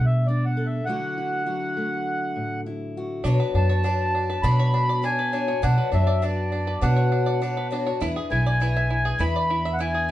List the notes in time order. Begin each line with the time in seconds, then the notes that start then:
Already playing: B2 G3 A3 D4 A4
0.06 E5
0.26 D4 D5
0.45 F#5
0.57 A4
0.66 E5
0.85 D3 F#3 A3 E4 F#5
0.90 F#4
1.18 E4
1.46 F#3 F#4
1.77 A3
2.36 A2
2.66 E4
2.97 F#4
3.24 B2 F#3 B3 D4 F#4 C#5
3.40 B4
3.54 F#2 D4 A5
3.69 C#5
3.83 B3 D4 F#4 C#5
4.15 D4
4.30 B4
4.42 B2 F#3 B3 D4 F#4 C#5 B5
4.59 C#5
4.74 D4
4.89 D5
5.02 B3 D4 F#4 C#5 G#5
5.19 B4
5.33 B3 D4 F#4 C#5
5.48 C#5
5.62 B2 F#3 B3 D4 F#4 C#5 F#5
5.78 B4
5.92 F#2 B3 D4 F#4 C#5 E5
6.07 D5
6.22 B3 D4 F#4 D5
6.52 D4
6.67 B4
6.81 B2 F#3 B3 D4 F#4 C#5 F#5
6.96 C#5
7.12 D4
7.26 D5
7.41 B3 D4 F#4 C#5
7.57 B4
7.71 B3 D4 F#4 C#5
7.87 C#5
8.00 E2 E3 D4 E4 G#4 B4
8.16 G#4
8.30 B1 D4 E4 G#4 B4 G#5
8.46 D5
8.60 E3 D4 E4 G#4 B4
8.77 E5
8.90 E4
9.05 G#4
9.18 E2 E3 D4 E4 G#4 B4 B5
9.36 D5
9.50 E4
9.65 E5
9.73 F#5
9.79 E3 D4 E4 G#4 B4 G#5
9.94 G#4